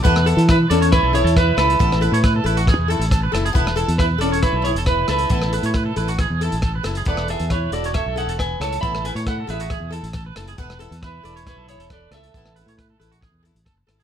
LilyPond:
<<
  \new Staff \with { instrumentName = "Clean electric guitar" } { \time 4/4 \key e \mixolydian \tempo 4 = 137 r4 <e' b'>8 <cis' a'>8 <e' b'>8 <e' cis''>8 <e' b'>8 <e' b'>8~ | <e' b'>2~ <e' b'>8 r4. | r4 <e' b'>8 <cis' a'>8 <e' b'>8 <e' cis''>8 <e' b'>8 <e' b'>8~ | <e' b'>2~ <e' b'>8 r4. |
<a' d''>8 <gis' e''>8 <e' cis''>8 <fis' d''>8 <a' e''>8 <a' fis''>8 <b' gis''>8 <cis'' a''>8 | <e'' b''>8 <b' gis''>8 <a' fis''>8 <gis' e''>4 r4. | r4 <e' b'>4 <e' b'>8 <e' cis''>8 <a' d''>8 <a' e''>8~ | <a' e''>2~ <a' e''>8 r4. | }
  \new Staff \with { instrumentName = "Clean electric guitar" } { \time 4/4 \key e \mixolydian b'8 a'8 b'8 d''16 cis''8 a'16 gis'16 a'16 b'8 a'8 | a'8 b'16 cis''16 b'16 a'16 b'16 fis'16 gis'8 a'8 a'16 b'16 a'16 gis'16 | b'8 a'8 b'8 d''16 cis''8 a'16 gis'16 a'16 b'8 a'8 | a'8 b'16 cis''16 b'16 a'16 b'16 fis'16 gis'8 a'8 a'16 b'16 a'16 gis'16 |
b'8 a'8 b'8 r16 cis''8 a'16 gis'16 a'16 r8 a'8 | a'8 b'16 cis''16 b'16 a'16 b'16 fis'16 gis'8 a'8 a'16 b'16 a'16 gis'16 | b'8 a'8 b'8 d''16 cis''8 a'16 gis'16 a'16 b'8 a'8 | a'8 b'16 cis''16 b'16 a'16 b'16 fis'16 gis'8 r8 a'16 r16 a'16 gis'16 | }
  \new Staff \with { instrumentName = "Steel-string acoustic guitar" } { \time 4/4 \key e \mixolydian <b e' a'>8 <e' a'>8 r8 <e' a'>8 r8 <e' a'>8 r8 <e' a'>8 | <b e' a'>8 <e' a'>8 r8 <e' a'>8 r8 <e' a'>8 r8 <e' a'>8 | <b e' a'>8 <e' a'>8 r8 <e' a'>8 r8 e'8 r8 <e' a'>8 | <b e' a'>8 <e' a'>8 r8 <e' a'>8 r8 <e' a'>8 r8 <e' a'>8 |
<b e' a'>8 <e' a'>8 r8 <e' a'>8 r8 <e' a'>8 r8 <e' a'>8 | <b e' a'>8 <e' a'>8 r8 <e' a'>8 r8 <e' a'>8 r8 <e' a'>8 | <b e' a'>8 <e' a'>8 r8 <e' a'>8 r8 e'8 r8 <e' a'>8 | <b e' a'>8 <e' a'>8 r8 <e' a'>8 r8 <e' a'>8 r8 <e' a'>8 | }
  \new Staff \with { instrumentName = "Fingered electric bass" } { \clef bass \time 4/4 \key e \mixolydian e,8. e8. e,8. b,,8 e,8. cis,8 | a,,8. a,8. a,,8. e,8 a,,8. fis,,8 | e,,8. e,8. e,,8. b,,8 e,,8. cis,8 | a,,8. a,8. a,,8. e,8 a,,8. fis,,8 |
e,,8. e,8. e,,8. b,,8 e,,8. cis,8 | a,,8. a,8. a,,8. e,8 a,,8. fis,,8 | e,,8. e,8. e,,8. b,,8 e,,8. cis,8 | a,,8. a,8. a,,8. e,8 a,,16 fis,,8 gis,,8 | }
  \new DrumStaff \with { instrumentName = "Drums" } \drummode { \time 4/4 <hh bd>16 ss16 hh16 hh16 <hh bd ss>8 hh16 hh16 <hh bd ss>8 hh16 hh16 <hh bd ss>8 <hh ss>16 hh16 | <hh bd>16 ss16 hh16 hh16 <hh bd ss>8 hh16 hh16 <hh bd ss>8 hh16 hh16 <hh bd ss>8 <hh ss>16 hh16 | <hh bd>16 ss16 hh16 hh16 <hh bd ss>8 hh16 hh16 <hh bd ss>8 hh16 hh16 <hh bd ss>8 <hh ss>16 hh16 | <hh bd>16 ss16 hh16 hh16 <hh bd ss>8 hh16 hh16 <hh bd ss>8 hh16 hh16 <hh bd ss>8 <hh ss>16 hh16 |
<hh bd>16 ss16 hh16 hh16 <hh bd ss>8 hh16 hh16 <hh bd ss>8 hh16 hh16 <hh bd ss>8 <hh ss>16 hh16 | <hh bd>16 ss16 hh16 hh16 <hh bd ss>8 hh16 hh16 <hh bd ss>8 hh16 hh16 <hh bd ss>8 <hh ss>16 hh16 | <hh bd>16 ss16 hh16 hh16 <hh bd ss>8 hh16 hh16 <hh bd ss>8 hh16 hh16 <hh bd ss>8 <hh ss>16 hh16 | <hh bd>16 ss16 hh16 hh16 <hh bd ss>8 hh16 hh16 <hh bd ss>8 hh16 hh16 <hh bd ss>8 <hh ss>16 hh16 | }
>>